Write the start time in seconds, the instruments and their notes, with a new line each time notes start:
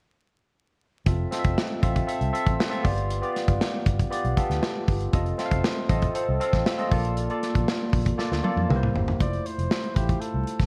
1.06 fingered electric bass F1, tine electric piano C4 F4 A4 E5, kick, closed hi-hat
1.31 tine electric piano C4 F4 A4 D#5, snare, closed hi-hat
1.39 tine electric piano E5
1.44 fingered electric bass F1, kick, closed hi-hat
1.58 snare
1.82 fingered electric bass A1, tine electric piano C4 F4 A4 E5, kick, closed hi-hat
1.96 kick, closed hi-hat
2.07 tine electric piano C4 F4 A4 E5, closed hi-hat
2.21 fingered electric bass C2, closed hi-hat
2.32 tine electric piano C4 F4 A4 E5, closed hi-hat
2.47 fingered electric bass A1, kick, closed hi-hat
2.60 snare
2.70 tine electric piano C4 F4 A4 E5, closed hi-hat
2.83 fingered electric bass G1, tine electric piano B3 F4 G4 D5, kick, open hi-hat
2.98 closed hi-hat
3.10 closed hi-hat
3.22 tine electric piano B3 F4 G4 D5, closed hi-hat
3.36 snare, closed hi-hat
3.48 fingered electric bass G1, kick, closed hi-hat
3.61 snare
3.86 fingered electric bass G1, kick, closed hi-hat
3.99 kick, closed hi-hat
4.10 tine electric piano B3 F4 G4 D5, closed hi-hat
4.24 fingered electric bass B1, closed hi-hat
4.37 tine electric piano B3 F4 G4 A4, kick, closed hi-hat
4.50 fingered electric bass D2, snare, closed hi-hat
4.63 snare
4.88 fingered electric bass G1, kick, open hi-hat
5.01 closed hi-hat
5.12 fingered electric bass F1, tine electric piano C4 F4 A4 D#5, kick, closed hi-hat
5.26 closed hi-hat
5.38 tine electric piano C4 F4 A4 E5, snare, closed hi-hat
5.45 tine electric piano F5
5.51 fingered electric bass F1, kick, closed hi-hat
5.64 snare
5.89 fingered electric bass A1, tine electric piano C4 F4 A4 D#5, kick, closed hi-hat
6.02 kick, closed hi-hat
6.14 tine electric piano C4 F4 A4 C5, closed hi-hat
6.29 fingered electric bass C2
6.40 tine electric piano C4 F4 A4 F5, closed hi-hat
6.53 fingered electric bass A1, kick, snare, closed hi-hat
6.66 snare
6.78 tine electric piano C4 F4 A4 D#5, closed hi-hat
6.91 fingered electric bass A#1, tine electric piano A#3 F4 A4 D5, kick, open hi-hat
7.05 closed hi-hat
7.17 closed hi-hat
7.29 tine electric piano A#3 F4 A4 D5, closed hi-hat
7.43 snare, closed hi-hat
7.55 fingered electric bass A#1, kick, closed hi-hat
7.68 snare
7.93 fingered electric bass A#1, kick, open hi-hat
8.06 kick, closed hi-hat
8.18 tine electric piano A#3 F4 A4 D5, snare
8.32 fingered electric bass D2, snare
8.44 tine electric piano A#3 F4 A4 D5, high tom
8.56 fingered electric bass F2, high tom
8.69 fingered electric bass C2, tine electric piano A#3 E4 G4 B4, mid tom
8.76 tine electric piano C5
8.83 mid tom
8.94 fingered electric bass G1, floor tom
9.08 floor tom
9.20 fingered electric bass F1, tine electric piano A3 E4 F4 C5, flugelhorn D5, kick, closed hi-hat
9.33 closed hi-hat
9.46 flugelhorn C5, closed hi-hat
9.58 fingered electric bass F1, closed hi-hat
9.71 snare
9.84 closed hi-hat
9.96 fingered electric bass A1, tine electric piano A3 E4 F4 C5, flugelhorn G4, kick, closed hi-hat
10.09 kick, closed hi-hat
10.21 flugelhorn A4, closed hi-hat
10.34 fingered electric bass C2
10.47 closed hi-hat
10.60 fingered electric bass A1, kick, snare, closed hi-hat